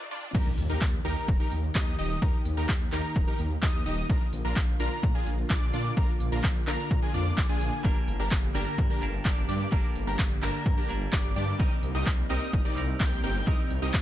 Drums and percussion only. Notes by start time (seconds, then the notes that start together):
0.11 mid tom
0.23 mid tom
0.35 kick, closed hi-hat, crash
0.46 closed hi-hat
0.58 open hi-hat
0.70 closed hi-hat
0.81 kick, clap, closed hi-hat
0.93 closed hi-hat
1.05 open hi-hat
1.17 closed hi-hat
1.28 kick, closed hi-hat
1.40 closed hi-hat
1.52 open hi-hat
1.63 closed hi-hat
1.75 kick, clap, closed hi-hat
1.87 closed hi-hat
1.99 open hi-hat
2.10 closed hi-hat
2.22 kick, closed hi-hat
2.34 closed hi-hat
2.45 open hi-hat
2.57 closed hi-hat
2.69 kick, clap, closed hi-hat
2.81 closed hi-hat
2.92 clap, open hi-hat
3.04 closed hi-hat
3.16 kick, closed hi-hat
3.27 closed hi-hat
3.39 open hi-hat
3.51 closed hi-hat
3.63 kick, clap, closed hi-hat
3.74 closed hi-hat
3.86 open hi-hat
3.98 closed hi-hat
4.10 kick, closed hi-hat
4.21 closed hi-hat
4.33 open hi-hat
4.45 closed hi-hat
4.56 kick, clap, closed hi-hat
4.68 closed hi-hat
4.80 open hi-hat
4.92 closed hi-hat
5.03 kick, closed hi-hat
5.15 closed hi-hat
5.27 open hi-hat
5.38 closed hi-hat
5.50 kick, clap, closed hi-hat
5.62 closed hi-hat
5.73 open hi-hat
5.85 closed hi-hat
5.97 kick, closed hi-hat
6.09 closed hi-hat
6.20 open hi-hat
6.32 closed hi-hat
6.44 kick, clap, closed hi-hat
6.56 closed hi-hat
6.67 clap, open hi-hat
6.79 closed hi-hat
6.91 kick, closed hi-hat
7.03 closed hi-hat
7.14 open hi-hat
7.26 closed hi-hat
7.38 kick, clap, closed hi-hat
7.49 closed hi-hat
7.61 open hi-hat
7.73 closed hi-hat
7.85 kick, closed hi-hat
7.96 closed hi-hat
8.08 open hi-hat
8.20 closed hi-hat
8.31 kick, clap, closed hi-hat
8.43 closed hi-hat
8.55 open hi-hat
8.67 closed hi-hat
8.78 kick, closed hi-hat
8.90 closed hi-hat
9.02 open hi-hat
9.14 closed hi-hat
9.25 kick, clap, closed hi-hat
9.37 closed hi-hat
9.49 open hi-hat
9.60 closed hi-hat
9.72 kick, closed hi-hat
9.84 closed hi-hat
9.96 open hi-hat
10.07 closed hi-hat
10.19 kick, clap, closed hi-hat
10.31 closed hi-hat
10.42 clap, open hi-hat
10.54 closed hi-hat
10.66 kick, closed hi-hat
10.78 closed hi-hat
10.89 open hi-hat
11.01 closed hi-hat
11.13 kick, clap, closed hi-hat
11.24 closed hi-hat
11.36 open hi-hat
11.48 closed hi-hat
11.60 kick, closed hi-hat
11.71 closed hi-hat
11.83 open hi-hat
11.95 closed hi-hat
12.06 kick, clap, closed hi-hat
12.18 closed hi-hat
12.30 open hi-hat
12.42 closed hi-hat
12.53 kick, closed hi-hat
12.65 closed hi-hat
12.77 open hi-hat
12.89 closed hi-hat
13.00 kick, clap, closed hi-hat
13.12 closed hi-hat
13.24 open hi-hat
13.35 closed hi-hat
13.47 kick, closed hi-hat
13.59 closed hi-hat
13.70 open hi-hat
13.82 closed hi-hat
13.94 kick, clap, closed hi-hat